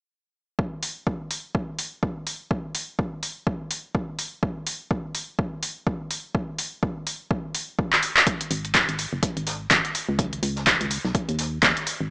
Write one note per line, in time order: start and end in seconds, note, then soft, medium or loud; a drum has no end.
0.59 kick loud
0.83 open hi-hat medium
1.07 kick medium
1.31 open hi-hat medium
1.55 kick loud
1.79 open hi-hat loud
2.03 kick loud
2.27 open hi-hat medium
2.51 kick loud
2.75 open hi-hat loud
2.99 kick loud
3.23 open hi-hat medium
3.47 kick loud
3.71 open hi-hat loud
3.95 kick loud
4.19 open hi-hat medium
4.43 kick loud
4.67 open hi-hat loud
4.91 kick loud
5.15 open hi-hat medium
5.39 kick loud
5.63 open hi-hat loud
5.87 kick loud
6.11 open hi-hat medium
6.35 kick loud
6.59 open hi-hat loud
6.83 kick loud
7.07 open hi-hat loud
7.31 kick loud
7.55 open hi-hat loud
7.79 kick loud
7.93 clap medium
8.03 open hi-hat medium
8.17 clap medium
8.27 kick loud
8.27 closed hi-hat medium
8.41 closed hi-hat medium
8.51 8.83 G#1 loud
8.51 closed hi-hat medium
8.51 open hi-hat loud
8.64 closed hi-hat soft
8.74 kick loud
8.74 snare loud
8.74 clap loud
8.74 closed hi-hat medium
8.89 9.06 G#1 medium
8.89 closed hi-hat medium
8.98 closed hi-hat medium
8.98 open hi-hat loud
9.13 9.20 F#1 medium
9.23 kick loud
9.23 closed hi-hat medium
9.37 9.67 G#1 medium
9.37 closed hi-hat medium
9.37 closed hi-hat soft
9.46 snare soft
9.46 closed hi-hat medium
9.46 open hi-hat loud
9.71 9.81 G#1 medium
9.71 kick loud
9.71 snare loud
9.71 clap loud
9.71 closed hi-hat medium
9.85 closed hi-hat soft
9.94 closed hi-hat medium
9.94 open hi-hat loud
10.09 10.39 C#2 medium
10.18 kick loud
10.18 closed hi-hat medium
10.33 closed hi-hat medium
10.43 10.75 C#2 medium
10.43 closed hi-hat medium
10.43 open hi-hat loud
10.56 snare soft
10.56 closed hi-hat soft
10.67 kick loud
10.67 snare loud
10.67 clap loud
10.67 closed hi-hat medium
10.81 10.98 C#2 medium
10.81 closed hi-hat medium
10.90 closed hi-hat medium
10.90 open hi-hat loud
11.04 11.12 B1 medium
11.04 snare soft
11.15 kick loud
11.15 closed hi-hat medium
11.29 11.59 D#2 medium
11.29 closed hi-hat soft
11.39 snare soft
11.39 closed hi-hat medium
11.39 open hi-hat loud
11.63 11.73 D#2 medium
11.63 kick loud
11.63 snare loud
11.63 clap loud
11.63 closed hi-hat medium
11.77 closed hi-hat soft
11.87 closed hi-hat medium
11.87 open hi-hat loud
12.01 12.10 G#1 medium